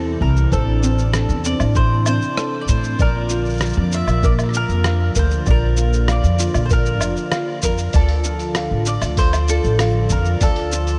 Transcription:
Already playing: upright bass E2, analog synth pad C3 E3 C4 E4, ukulele C4 E4 C5, mandolin A4, synth texture D5
0.21 upright bass C2, ukulele E4, mandolin A#4, kick
0.37 shaker
0.52 upright bass A1, analog synth pad D4, mandolin A4, ukulele C5, kick, shaker
0.83 ukulele C4, shaker
0.99 shaker
1.14 ukulele A4, cross-stick, shaker
1.29 upright bass E2, shaker
1.45 ukulele C4, mandolin D5, shaker
1.60 upright bass A1, low woodblock, shaker
1.75 ukulele E4, mandolin C5, kick, shaker
2.06 ukulele C4, mandolin C5, low woodblock, shaker
2.22 shaker
2.37 ukulele A4, cross-stick, shaker
2.61 mandolin D5
2.68 upright bass A2, ukulele E4, mandolin C5, kick, shaker
2.84 shaker
2.98 upright bass A#1, analog synth pad D3 F3 A#3 F4, mandolin A#4, ukulele D5, kick, shaker
3.29 ukulele F4, shaker
3.45 shaker
3.49 shaker
3.53 shaker
3.57 cross-stick, shaker
3.61 shaker
3.65 shaker
3.69 shaker
3.73 shaker
3.77 upright bass F2
3.92 ukulele F4, mandolin E5, shaker
4.07 upright bass A#1, low woodblock, shaker
4.23 ukulele A#4, mandolin D5, kick, shaker
4.39 cross-stick, low woodblock, shaker
4.44 cross-stick
4.49 cross-stick
4.54 ukulele F4, mandolin A#4, shaker
4.69 upright bass F2, shaker
4.84 ukulele F5, cross-stick, shaker
5.15 upright bass D2, ukulele A#4, mandolin C5, kick, shaker
5.31 shaker
5.46 upright bass A#1, ukulele D5, kick, shaker
5.50 mandolin A#4
5.77 ukulele F4, shaker
5.93 shaker
6.08 mandolin D5, ukulele F5, cross-stick, shaker
6.24 upright bass F2, shaker
6.39 ukulele F4, shaker
6.54 upright bass A#1, low woodblock, shaker
6.66 mandolin C5
6.70 ukulele A#4, mandolin A#4, kick, shaker
6.86 shaker
7.01 upright bass F1, ukulele F4, low woodblock, shaker
7.17 shaker
7.32 ukulele F5, cross-stick, shaker
7.62 upright bass F2, ukulele A#4, mandolin A#4, kick, shaker
7.78 shaker
7.93 upright bass D2, mandolin A4, ukulele D5, kick, open hi-hat, shaker
8.09 open hi-hat
8.24 ukulele F4, shaker
8.39 open hi-hat, shaker
8.55 ukulele F5, cross-stick, open hi-hat, shaker
8.71 upright bass A1
8.86 ukulele F4, mandolin D5, shaker
9.02 upright bass D2, open hi-hat, low woodblock, shaker
9.17 ukulele A4, mandolin C5, kick, open hi-hat, shaker
9.33 cross-stick, open hi-hat, low woodblock, shaker
9.48 ukulele F4, mandolin A4, shaker
9.64 upright bass A1, shaker
9.79 ukulele F5, cross-stick, open hi-hat, shaker
10.10 upright bass F2, mandolin A#4, kick, shaker
10.25 shaker
10.41 upright bass D2, mandolin A4, ukulele D5, kick, open hi-hat, shaker
10.56 open hi-hat
10.72 ukulele F4, shaker
10.87 open hi-hat, shaker

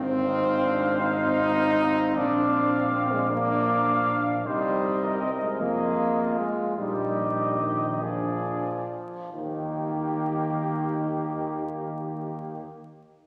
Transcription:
Already playing: tuba G#1, trombone C4, french horn C4, flugelhorn C5, trumpet F5
0.26 trombone D#4
0.63 trombone D4
1.02 trombone C4, french horn D#4
2.16 tuba A#1, french horn D4, flugelhorn D5, trumpet F5
2.93 french horn C4
3.12 french horn G#3
3.31 french horn A#3, trombone D4, flugelhorn D5, trumpet F5
4.45 tuba C2, french horn G3, trombone D#4, flugelhorn C5, trumpet D#5
5.04 flugelhorn A#4
5.22 french horn C4
5.42 french horn G#3
5.61 tuba F2, french horn A#3, trombone F4, flugelhorn G#4, trumpet D#5
6.39 french horn G#3
6.78 tuba A#1, french horn G3, trombone D#4, flugelhorn G4, trumpet D#5
7.60 french horn D#3
8.02 french horn F3, trombone D4, flugelhorn G#4, trumpet D5
9.34 tuba D#2, french horn D#3, trombone D#3, flugelhorn A#3, trumpet G4

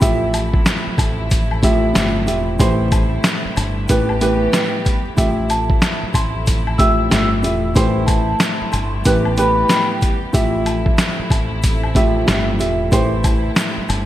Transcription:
0.00 fingered electric bass A1, grand piano A2 F3 G4 E5, string section C3 F3 A3 E4, kick, closed hi-hat, shaker
0.34 closed hi-hat, high woodblock, shaker
0.54 kick
0.66 snare, closed hi-hat, shaker
0.87 muted fingered electric bass stroke
0.98 fingered electric bass A1, kick, closed hi-hat, high woodblock, shaker
1.31 kick, closed hi-hat, shaker
1.51 high woodblock
1.62 grand piano A2 F3 G4 E5, kick, closed hi-hat, shaker
1.93 fingered electric bass G1, grand piano A2 F3 G4 E5, snare, closed hi-hat, shaker
2.26 fingered electric bass E1, grand piano A2 F3 G4 E5, closed hi-hat, shaker
2.59 fingered electric bass A1, grand piano A2 E3 G4 C5, string section G3 E4, kick, closed hi-hat, shaker
2.92 kick, closed hi-hat, high woodblock, shaker
3.24 snare, closed hi-hat, shaker
3.45 muted fingered electric bass stroke
3.57 fingered electric bass G1, closed hi-hat, high woodblock, shaker
3.89 fingered electric bass A1, grand piano A2 E3 G4 B4, string section E3 B3 G4, kick, closed hi-hat, shaker
4.09 high woodblock
4.21 grand piano A2 E3 G4 B4, closed hi-hat, shaker
4.53 snare, closed hi-hat, shaker
4.85 kick, closed hi-hat, shaker
5.16 fingered electric bass A1, grand piano A2 F3 G4 E5, string section C3 F3 A3 E4, kick, closed hi-hat, shaker
5.50 vibraphone A5, closed hi-hat, high woodblock, shaker
5.70 kick
5.82 snare, closed hi-hat, shaker
6.03 muted fingered electric bass stroke
6.14 fingered electric bass A1, vibraphone C6, kick, closed hi-hat, high woodblock, shaker
6.47 kick, closed hi-hat, shaker
6.67 high woodblock
6.78 grand piano A2 F3 G4 E5, vibraphone E6, kick, closed hi-hat, shaker
7.09 fingered electric bass G1, grand piano A2 F3 G4 E5, snare, closed hi-hat, shaker
7.42 fingered electric bass E1, grand piano A2 F3 G4 E5, closed hi-hat, shaker
7.75 fingered electric bass A1, grand piano A2 E3 G4 C5, string section G3 E4, kick, closed hi-hat, shaker
8.06 vibraphone A5, kick, closed hi-hat, high woodblock, shaker
8.40 snare, closed hi-hat, shaker
8.61 muted fingered electric bass stroke
8.72 fingered electric bass G1, vibraphone C6, closed hi-hat, high woodblock, shaker
9.05 fingered electric bass A1, grand piano A2 E3 G4 B4, string section E3 B3 G4, kick, closed hi-hat, shaker
9.25 high woodblock
9.37 grand piano A2 E3 G4 B4, vibraphone B5, closed hi-hat, shaker
9.70 snare, closed hi-hat, shaker
10.02 kick, closed hi-hat, shaker
10.33 fingered electric bass A1, grand piano A2 F3 G4 E5, string section C3 F3 A3 E4, kick, closed hi-hat, shaker
10.66 closed hi-hat, high woodblock, shaker
10.86 kick
10.98 snare, closed hi-hat, shaker
11.19 muted fingered electric bass stroke
11.30 fingered electric bass A1, kick, closed hi-hat, high woodblock, shaker
11.63 kick, closed hi-hat, shaker
11.83 high woodblock
11.95 grand piano A2 F3 G4 E5, kick, closed hi-hat, shaker
12.26 fingered electric bass G1, grand piano A2 F3 G4 E5, snare, closed hi-hat, shaker
12.59 fingered electric bass E1, grand piano A2 F3 G4 E5, closed hi-hat, shaker
12.92 fingered electric bass A1, grand piano A2 E3 G4 C5, string section G3 E4, kick, closed hi-hat, shaker
13.24 kick, closed hi-hat, high woodblock, shaker
13.56 snare, closed hi-hat, shaker
13.77 muted fingered electric bass stroke
13.89 fingered electric bass G1, closed hi-hat, high woodblock, shaker

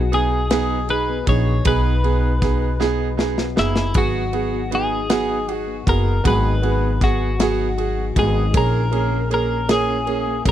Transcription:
Already playing: upright bass B1, steel-string acoustic guitar F#3 B3 D#4 G#4, clean electric guitar F#4
0.12 grand piano B3 D#4 G#4, steel-string acoustic guitar D#4, clean electric guitar G#4, ride
0.32 steel-string acoustic guitar G#4
0.50 steel-string acoustic guitar F#3 G#4, grand piano B3 D#4 G#4, snare, ride
0.70 steel-string acoustic guitar D#4
0.89 grand piano D#4 G#4, steel-string acoustic guitar G#4, clean electric guitar B4, ride
1.10 steel-string acoustic guitar B3
1.26 upright bass A#1, grand piano B3 D#4 G#4, steel-string acoustic guitar D#4, clean electric guitar C#5, kick, ride
1.47 steel-string acoustic guitar G#4
1.65 upright bass B1, steel-string acoustic guitar F#3 G#4, grand piano B3 D#4 G#4, clean electric guitar B4, kick, ride
1.85 steel-string acoustic guitar D#4
2.04 grand piano B3 D#4 G#4, steel-string acoustic guitar G#4, ride
2.23 steel-string acoustic guitar B3
2.42 grand piano B3 D#4 G#4, steel-string acoustic guitar D#4, kick, snare, ride
2.62 steel-string acoustic guitar G#4
2.80 steel-string acoustic guitar F#3 G#4, grand piano B3 D#4 G#4, snare
3.00 steel-string acoustic guitar D#4
3.17 grand piano B3 D#4 G#4, steel-string acoustic guitar G#4, snare
3.37 steel-string acoustic guitar B3, snare
3.56 upright bass F#1, grand piano B3 D#4 G#4, clean electric guitar E4, snare
3.76 steel-string acoustic guitar G#4, snare
3.94 upright bass G#1, steel-string acoustic guitar F#3 G#4, grand piano B3 F#4 G#4, clean electric guitar F#4, kick, ride
4.14 steel-string acoustic guitar D#4
4.33 grand piano B3 F#4 G#4, steel-string acoustic guitar G#4, ride
4.54 steel-string acoustic guitar B3
4.71 grand piano B3 F#4 G#4, steel-string acoustic guitar D#4, clean electric guitar G#4, ride
4.92 steel-string acoustic guitar G#4
5.10 steel-string acoustic guitar F#3 G#4, grand piano B3 F#4 G#4, snare, ride
5.30 steel-string acoustic guitar D#4
5.48 grand piano F#4 G#4, steel-string acoustic guitar G#4, ride
5.55 clean electric guitar F#4
5.67 steel-string acoustic guitar B3
5.86 upright bass F#1, grand piano B3 F#4 G#4, steel-string acoustic guitar D#4, clean electric guitar A#4, kick, ride
6.05 steel-string acoustic guitar G#4
6.24 upright bass G#1, steel-string acoustic guitar F#3 G#4, grand piano B3 F#4 G#4, clean electric guitar B4, kick, ride
6.44 steel-string acoustic guitar D#4
6.62 grand piano B3 F#4 G#4, steel-string acoustic guitar G#4, ride
6.82 steel-string acoustic guitar B3
7.01 grand piano B3 F#4 G#4, steel-string acoustic guitar D#4, clean electric guitar F#4, kick, snare, ride
7.20 steel-string acoustic guitar G#4
7.39 steel-string acoustic guitar F#3 G#4, grand piano B3 F#4 G#4, snare, ride
7.59 steel-string acoustic guitar D#4
7.78 grand piano F#4 G#4, steel-string acoustic guitar G#4, ride
7.97 steel-string acoustic guitar B3
8.16 upright bass G#1, grand piano B3 F#4 G#4, steel-string acoustic guitar D#4, clean electric guitar G#4, kick, ride
8.35 steel-string acoustic guitar G#4
8.54 upright bass A#1, steel-string acoustic guitar E3 G#4, grand piano A#3 C#4 G#4, clean electric guitar A#4, kick, ride
8.73 steel-string acoustic guitar C#4
8.92 grand piano A#3 C#4 G#4, steel-string acoustic guitar G#4, ride
9.12 steel-string acoustic guitar A#3
9.30 grand piano A#3 C#4 G#4, steel-string acoustic guitar C#4, clean electric guitar A#4, ride
9.50 steel-string acoustic guitar G#4
9.69 steel-string acoustic guitar E3 G#4, grand piano A#3 C#4 G#4, clean electric guitar G#4, snare, ride
9.89 steel-string acoustic guitar C#4
10.06 grand piano A#3 C#4 G#4, steel-string acoustic guitar G#4, ride
10.27 steel-string acoustic guitar A#3
10.45 upright bass A#1, grand piano A#3 C#4 G#4, steel-string acoustic guitar C#4, kick, ride

